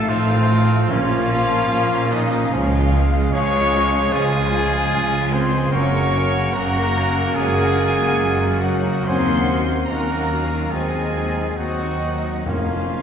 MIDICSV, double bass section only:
0, 0, Header, 1, 2, 480
1, 0, Start_track
1, 0, Tempo, 807537
1, 1495, Time_signature, 4, 2, 24, 8
1, 4367, Tempo, 842697
1, 6767, Tempo, 913242
1, 7535, End_track
2, 0, Start_track
2, 0, Title_t, "Double bass section"
2, 0, Program_c, 0, 48
2, 50, Note_on_c, 0, 33, 89
2, 477, Note_off_c, 0, 33, 0
2, 534, Note_on_c, 0, 34, 98
2, 954, Note_off_c, 0, 34, 0
2, 1017, Note_on_c, 0, 34, 102
2, 1441, Note_off_c, 0, 34, 0
2, 1496, Note_on_c, 0, 37, 119
2, 1924, Note_off_c, 0, 37, 0
2, 1988, Note_on_c, 0, 37, 94
2, 2402, Note_off_c, 0, 37, 0
2, 2462, Note_on_c, 0, 37, 105
2, 2871, Note_off_c, 0, 37, 0
2, 2933, Note_on_c, 0, 37, 107
2, 3347, Note_off_c, 0, 37, 0
2, 3403, Note_on_c, 0, 30, 106
2, 3830, Note_off_c, 0, 30, 0
2, 3887, Note_on_c, 0, 30, 90
2, 4311, Note_off_c, 0, 30, 0
2, 4370, Note_on_c, 0, 30, 90
2, 4787, Note_off_c, 0, 30, 0
2, 4849, Note_on_c, 0, 30, 94
2, 5286, Note_off_c, 0, 30, 0
2, 5353, Note_on_c, 0, 39, 102
2, 5767, Note_off_c, 0, 39, 0
2, 5822, Note_on_c, 0, 39, 74
2, 6230, Note_off_c, 0, 39, 0
2, 6290, Note_on_c, 0, 39, 78
2, 6713, Note_off_c, 0, 39, 0
2, 6772, Note_on_c, 0, 39, 70
2, 7187, Note_off_c, 0, 39, 0
2, 7247, Note_on_c, 0, 29, 74
2, 7535, Note_off_c, 0, 29, 0
2, 7535, End_track
0, 0, End_of_file